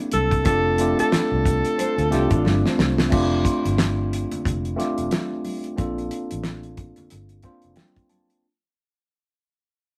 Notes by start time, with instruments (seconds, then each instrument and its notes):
Already playing: tine electric piano A#3 C4 D4 E4 G4 A4
0.12 fingered electric bass C2, alto saxophone A4, celesta E6, closed hi-hat, high conga
0.31 kick, closed hi-hat
0.43 fingered electric bass F1, tine electric piano A3 C4 D4 F4 G4, alto saxophone A4, kick, closed hi-hat, muted conga
0.78 tine electric piano A3 C4 D4 F4 G4, closed hi-hat
0.99 alto saxophone A4, muted fingered electric bass stroke, closed hi-hat
1.12 muted fingered electric bass stroke, snare, closed hi-hat, high conga
1.32 fingered electric bass C2
1.45 kick, closed hi-hat
1.65 closed hi-hat
1.78 clean electric guitar A4 C5, closed hi-hat, muted conga
1.98 fingered electric bass D2, clean electric guitar F4 A4, closed hi-hat
2.10 fingered electric bass C2, tine electric piano A3 C4 D4 F4 G4, clean electric guitar E4 G4, snare, closed hi-hat
2.31 fingered electric bass A1, clean electric guitar D4 F4, kick, closed hi-hat
2.45 fingered electric bass G1, clean electric guitar D4, snare, high conga
2.65 clean electric guitar A3 C4, snare
2.79 fingered electric bass C2, snare, high conga
2.98 snare
3.10 fingered electric bass F1, tine electric piano A3 C4 D4 F4 G4, kick, crash, muted conga
3.45 celesta C6, kick, closed hi-hat
3.65 fingered electric bass G1, closed hi-hat
3.78 snare, closed hi-hat, high conga
4.13 closed hi-hat
4.31 closed hi-hat, low conga
4.45 fingered electric bass F1, kick, closed hi-hat, muted conga, low conga
4.65 closed hi-hat
4.76 tine electric piano A3 C4 D4 F4 G4, closed hi-hat
4.80 snare
4.98 fingered electric bass E1, closed hi-hat
5.11 snare, closed hi-hat, high conga
5.45 open hi-hat, high conga
5.64 closed hi-hat
5.76 fingered electric bass A#1, tine electric piano A#3 C4 D4 F4 A4, kick, closed hi-hat, muted conga
5.98 closed hi-hat
6.11 closed hi-hat
6.31 fingered electric bass A1, closed hi-hat
6.44 snare, closed hi-hat, high conga
6.63 closed hi-hat
6.77 kick, closed hi-hat
6.96 closed hi-hat, low conga
7.10 fingered electric bass G1, closed hi-hat, muted conga
7.29 closed hi-hat
7.43 tine electric piano A#3 C4 D4 F4 C5, kick, closed hi-hat, muted conga
7.62 fingered electric bass F1, closed hi-hat
7.76 tine electric piano G5, snare, closed hi-hat, high conga
7.96 kick, closed hi-hat
8.10 tine electric piano A5, closed hi-hat, high conga
8.30 closed hi-hat